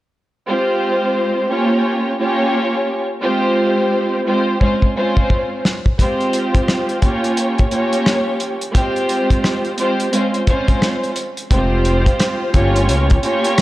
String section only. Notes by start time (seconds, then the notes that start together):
0.47 G#3 C4 F4 G4 C5
1.48 A#3 C#4 F4 G4 C#5
2.19 A#3 C#4 F4 G4 C#5
3.20 G#3 C4 F4 G4 C5
4.25 G#3 C4 F4 G4 C5
4.59 G#3 C4 C#4 F4 C5
4.95 G#3 C4 C#4 F4 C5
5.98 G#3 C4 F4 G4 C5
7.00 A#3 C#4 F4 G4 C#5
7.70 A#3 C#4 F4 G4 C#5
8.72 G#3 C4 F4 G4 C5
9.77 G#3 C4 F4 G4 C5
10.11 G#3 C4 C#4 F4 C5
10.47 G#3 C4 C#4 F4 C5
11.50 G#3 C4 F4 G4 C5
12.52 A#3 C#4 F4 G4 C#5
13.22 A#3 C#4 F4 G4 C#5